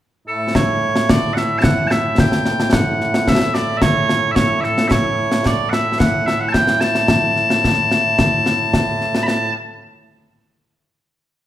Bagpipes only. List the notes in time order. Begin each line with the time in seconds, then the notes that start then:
0.28 A2 A3 E4 A4
0.55 C#5
1.10 D5
1.34 E5 F#5
1.58 A5
1.63 F#5
1.87 E5 A5
2.20 G5
2.73 F#5
3.28 E5
3.54 D5
3.77 E5
3.82 C#5
4.31 E5
4.35 C#5
4.61 A4 E5
4.88 C#5 E5
5.46 D5
5.70 E5 F#5
5.99 F#5
6.26 E5
6.40 F#5
6.49 A5
6.53 G5
6.81 A5
9.23 A5 B5